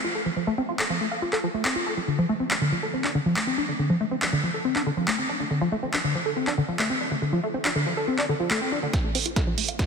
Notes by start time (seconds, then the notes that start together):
0.04 F4
0.15 A4
0.26 F3
0.37 F3
0.47 A3
0.58 C4
0.69 F4
0.79 A4, clap
0.90 F3
1.01 A3
1.11 F5
1.22 F4
1.33 A4, clap
1.44 F3
1.54 A3
1.65 C4, clap
1.76 F4
1.86 A4
1.97 F3
2.08 D3
2.19 F3
2.29 A3
2.40 C4
2.51 D4, clap
2.61 D3
2.72 F3
2.83 A4
2.94 C4
3.04 D4, clap
3.15 D3
3.26 F3
3.36 A3, clap
3.47 C4
3.58 D4
3.68 D3
3.79 D3
3.90 F3
4.01 A3
4.11 C4
4.22 D4, clap
4.33 D3
4.43 F3
4.54 A4
4.65 C4
4.76 D4, clap
4.86 D3
4.97 F3
5.08 A3, clap
5.18 C4
5.29 D4
5.40 D3
5.51 D3
5.61 F3
5.72 A3
5.83 C4
5.94 D4, clap
6.04 D3
6.15 F3
6.26 A4
6.36 C4
6.47 D4, clap
6.58 D3
6.69 F3
6.79 A3, clap
6.90 C4
7.01 D4
7.11 D3
7.22 D3
7.33 F3
7.43 A3
7.54 C4
7.65 D4, clap
7.76 D3
7.86 F3
7.97 A4
8.08 C4
8.19 D4, clap
8.29 D3
8.40 F3
8.51 A3, clap
8.61 C4
8.72 D4
8.83 D3
8.93 F3, kick, snare, closed hi-hat
9.04 A3
9.15 C4, open hi-hat
9.26 F4, closed hi-hat
9.36 A4, kick, snare, closed hi-hat
9.47 F3
9.58 A3, open hi-hat
9.68 F5, closed hi-hat
9.79 F4, kick, snare, closed hi-hat